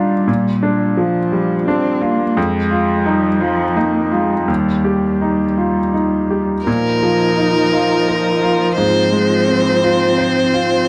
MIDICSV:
0, 0, Header, 1, 6, 480
1, 0, Start_track
1, 0, Tempo, 696864
1, 193, Time_signature, 3, 2, 24, 8
1, 2592, Tempo, 723764
1, 4992, Tempo, 700117
1, 7392, End_track
2, 0, Start_track
2, 0, Title_t, "Violin"
2, 0, Program_c, 0, 40
2, 4516, Note_on_c, 0, 70, 42
2, 5925, Note_off_c, 0, 70, 0
2, 5957, Note_on_c, 0, 72, 43
2, 7392, Note_off_c, 0, 72, 0
2, 7392, End_track
3, 0, Start_track
3, 0, Title_t, "Ambient pad"
3, 0, Program_c, 1, 92
3, 4511, Note_on_c, 1, 58, 48
3, 4515, Note_on_c, 1, 75, 52
3, 4520, Note_on_c, 1, 65, 49
3, 5922, Note_off_c, 1, 58, 0
3, 5924, Note_off_c, 1, 75, 0
3, 5962, Note_on_c, 1, 60, 49
3, 5964, Note_on_c, 1, 72, 57
3, 7367, Note_off_c, 1, 65, 0
3, 7392, Note_off_c, 1, 60, 0
3, 7392, Note_off_c, 1, 72, 0
3, 7392, End_track
4, 0, Start_track
4, 0, Title_t, "Grand piano"
4, 0, Program_c, 2, 0
4, 0, Control_c, 2, 64, 127
4, 0, Note_on_c, 2, 46, 33
4, 0, Note_on_c, 2, 62, 28
4, 0, Note_on_c, 2, 63, 23
4, 0, Note_on_c, 2, 65, 28
4, 95, Note_off_c, 2, 62, 0
4, 163, Note_off_c, 2, 46, 0
4, 190, Note_on_c, 2, 46, 37
4, 206, Control_c, 2, 64, 0
4, 209, Note_off_c, 2, 63, 0
4, 315, Control_c, 2, 64, 127
4, 335, Note_off_c, 2, 65, 0
4, 432, Note_on_c, 2, 62, 33
4, 670, Note_on_c, 2, 53, 33
4, 819, Note_off_c, 2, 62, 0
4, 909, Note_on_c, 2, 55, 30
4, 1058, Note_off_c, 2, 53, 0
4, 1153, Note_off_c, 2, 55, 0
4, 1156, Note_on_c, 2, 62, 38
4, 1387, Note_on_c, 2, 65, 35
4, 1539, Note_off_c, 2, 62, 0
4, 1604, Note_off_c, 2, 46, 0
4, 1630, Note_off_c, 2, 65, 0
4, 1632, Note_on_c, 2, 41, 50
4, 1646, Control_c, 2, 64, 0
4, 1776, Control_c, 2, 64, 127
4, 1867, Note_on_c, 2, 65, 38
4, 2106, Note_on_c, 2, 63, 36
4, 2251, Note_off_c, 2, 65, 0
4, 2346, Note_on_c, 2, 65, 32
4, 2493, Note_off_c, 2, 63, 0
4, 2590, Note_on_c, 2, 63, 38
4, 2591, Note_off_c, 2, 65, 0
4, 2826, Note_on_c, 2, 65, 31
4, 2975, Note_off_c, 2, 63, 0
4, 3045, Note_off_c, 2, 41, 0
4, 3067, Note_on_c, 2, 39, 34
4, 3070, Note_off_c, 2, 65, 0
4, 3085, Control_c, 2, 64, 0
4, 3192, Control_c, 2, 64, 127
4, 3309, Note_on_c, 2, 67, 27
4, 3555, Note_on_c, 2, 63, 25
4, 3698, Note_off_c, 2, 67, 0
4, 3795, Note_on_c, 2, 65, 20
4, 3941, Note_off_c, 2, 63, 0
4, 4034, Note_on_c, 2, 63, 23
4, 4036, Note_off_c, 2, 65, 0
4, 4277, Note_on_c, 2, 67, 21
4, 4421, Note_off_c, 2, 63, 0
4, 4489, Note_off_c, 2, 39, 0
4, 4518, Note_off_c, 2, 67, 0
4, 4519, Note_on_c, 2, 46, 39
4, 4532, Control_c, 2, 64, 0
4, 4631, Control_c, 2, 64, 127
4, 4758, Note_on_c, 2, 53, 33
4, 4987, Note_on_c, 2, 63, 32
4, 5140, Note_off_c, 2, 53, 0
4, 5233, Note_on_c, 2, 65, 34
4, 5377, Note_off_c, 2, 63, 0
4, 5470, Note_on_c, 2, 70, 34
4, 5619, Note_off_c, 2, 65, 0
4, 5709, Note_on_c, 2, 65, 35
4, 5855, Note_off_c, 2, 70, 0
4, 5926, Note_off_c, 2, 46, 0
4, 5949, Note_on_c, 2, 44, 44
4, 5950, Note_off_c, 2, 65, 0
4, 5966, Control_c, 2, 64, 0
4, 6095, Control_c, 2, 64, 127
4, 6189, Note_on_c, 2, 56, 34
4, 6435, Note_on_c, 2, 60, 36
4, 6578, Note_off_c, 2, 56, 0
4, 6674, Note_on_c, 2, 65, 37
4, 6820, Note_off_c, 2, 60, 0
4, 6911, Note_on_c, 2, 72, 42
4, 7057, Note_off_c, 2, 65, 0
4, 7153, Note_on_c, 2, 65, 40
4, 7295, Note_off_c, 2, 72, 0
4, 7364, Note_off_c, 2, 44, 0
4, 7392, Note_off_c, 2, 65, 0
4, 7392, End_track
5, 0, Start_track
5, 0, Title_t, "Viola"
5, 0, Program_c, 3, 41
5, 4517, Note_on_c, 3, 63, 44
5, 5958, Note_on_c, 3, 60, 47
5, 5969, Note_off_c, 3, 63, 0
5, 7392, Note_off_c, 3, 60, 0
5, 7392, End_track
6, 0, Start_track
6, 0, Title_t, "Cello"
6, 0, Program_c, 4, 42
6, 0, Note_on_c, 4, 55, 32
6, 673, Note_on_c, 4, 53, 37
6, 684, Note_off_c, 4, 55, 0
6, 1149, Note_off_c, 4, 53, 0
6, 1154, Note_on_c, 4, 60, 41
6, 1394, Note_on_c, 4, 58, 45
6, 1404, Note_off_c, 4, 60, 0
6, 1631, Note_on_c, 4, 56, 45
6, 1641, Note_off_c, 4, 58, 0
6, 2116, Note_on_c, 4, 55, 51
6, 2127, Note_off_c, 4, 56, 0
6, 2343, Note_on_c, 4, 53, 50
6, 2353, Note_off_c, 4, 55, 0
6, 2595, Note_on_c, 4, 58, 42
6, 2605, Note_off_c, 4, 53, 0
6, 2836, Note_on_c, 4, 56, 35
6, 2846, Note_off_c, 4, 58, 0
6, 3068, Note_off_c, 4, 56, 0
6, 3072, Note_on_c, 4, 55, 33
6, 4357, Note_off_c, 4, 55, 0
6, 4518, Note_on_c, 4, 53, 40
6, 7392, Note_off_c, 4, 53, 0
6, 7392, End_track
0, 0, End_of_file